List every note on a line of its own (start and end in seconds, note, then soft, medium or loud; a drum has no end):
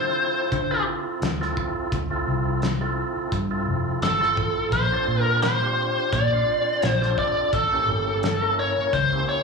0.00 0.36 D3 loud
0.00 0.58 C4 medium
0.00 0.58 E4 medium
0.00 0.58 F4 medium
0.00 0.59 A4 medium
0.00 0.84 C5 medium
0.52 0.82 D3 medium
0.52 kick loud
0.52 closed hi-hat medium
0.71 1.28 C4 medium
0.71 1.29 E4 medium
0.71 1.29 F4 medium
0.71 1.29 A4 medium
1.22 1.51 D2 medium
1.22 snare loud
1.22 closed hi-hat medium
1.41 1.99 C4 medium
1.41 1.99 E4 medium
1.41 1.99 F4 medium
1.41 1.99 A4 loud
1.41 snare soft
1.57 kick medium
1.92 2.22 D2 medium
1.92 kick loud
1.92 closed hi-hat medium
2.10 2.68 C4 medium
2.10 2.68 E4 medium
2.10 2.69 F4 medium
2.10 2.69 A4 loud
2.27 3.03 C2 medium
2.62 snare medium
2.62 closed hi-hat medium
2.81 3.39 C4 medium
2.81 3.39 E4 medium
2.81 3.39 F4 medium
2.81 3.39 A4 loud
3.16 muted fingered electric bass stroke soft
3.32 3.62 G2 medium
3.32 kick loud
3.32 closed hi-hat medium
3.51 4.09 C4 medium
3.51 4.09 E4 medium
3.51 4.09 F4 medium
3.51 4.09 A4 medium
3.67 3.98 F1 medium
4.02 4.34 G1 medium
4.02 4.75 A4 medium
4.02 snare loud
4.02 closed hi-hat medium
4.21 4.72 C4 medium
4.21 4.72 E4 medium
4.21 4.72 F4 medium
4.21 4.72 A4 medium
4.21 snare soft
4.37 4.69 A1 medium
4.37 kick medium
4.72 4.88 A#1 loud
4.72 5.22 C5 medium
4.72 kick loud
4.72 closed hi-hat medium
4.92 5.49 C4 medium
4.92 5.49 D4 medium
4.92 5.50 F4 medium
4.92 5.49 A4 medium
5.08 5.97 A#2 medium
5.22 5.39 A#4 medium
5.42 6.13 C5 medium
5.42 snare loud
5.42 closed hi-hat medium
5.62 6.19 C4 medium
5.62 6.19 D4 medium
5.62 6.19 F4 medium
5.62 6.20 G4 medium
6.12 6.42 A#2 medium
6.12 6.88 D5 medium
6.12 kick loud
6.12 closed hi-hat medium
6.32 6.90 C4 medium
6.32 6.90 D4 medium
6.32 6.90 F4 medium
6.32 6.90 C5 medium
6.82 7.13 A#1 medium
6.82 snare loud
6.82 closed hi-hat medium
6.88 7.18 C5 medium
7.01 7.52 C4 medium
7.01 7.52 D4 medium
7.01 7.53 F4 medium
7.01 7.53 A4 medium
7.01 snare soft
7.18 7.54 D5 medium
7.18 kick medium
7.53 7.83 A1 loud
7.53 8.54 A4 medium
7.53 kick loud
7.53 closed hi-hat medium
7.72 8.29 A#3 medium
7.72 8.30 C#4 medium
7.72 8.30 E4 medium
7.72 8.30 G4 medium
7.88 8.63 G1 medium
8.23 snare loud
8.23 closed hi-hat medium
8.41 8.99 A#3 medium
8.41 9.00 C#4 medium
8.41 9.00 E4 medium
8.41 8.99 A#4 medium
8.59 8.91 C#5 medium
8.78 muted fingered electric bass stroke soft
8.93 9.23 C#2 medium
8.93 9.29 C5 medium
8.93 kick loud
8.93 closed hi-hat medium
9.12 9.43 A#3 medium
9.12 9.43 C#4 medium
9.12 9.43 E4 medium
9.12 9.43 G4 medium
9.29 9.43 C#5 medium